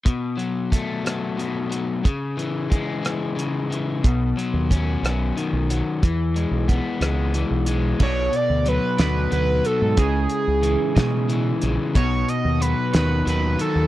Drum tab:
CC |------|------|------|------|
HH |xxxxxx|xxxxxx|xxxxxx|xxxxxx|
SD |---r--|---r--|---r--|---r--|
BD |o-o---|o-o---|o-o---|o-o---|

CC |x-----|------|------|
HH |-xxxxx|xxxxxx|xxxxxx|
SD |---o--|---o--|---o--|
BD |o-----|o--o--|o-----|